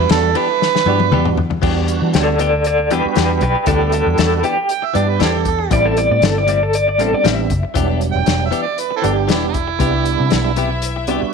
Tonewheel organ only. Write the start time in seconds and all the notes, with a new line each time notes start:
Already playing: G3 B3 D4 F#4
0.87 G3 B3 D4 F#4
1.63 G3 B3 D4 F#4
2.90 G3 B3 D4 F#4
3.68 G3 B3 D4 F#4
4.95 G3 B3 D4 G4
5.71 G3 B3 C4 E4
6.99 G3 B3 C4 D4
7.76 F#3 G3 B3 D4
9.04 G3 B3 D4 G4
9.80 G3 B3 D4 E4
11.08 G3 B3 D4 F#4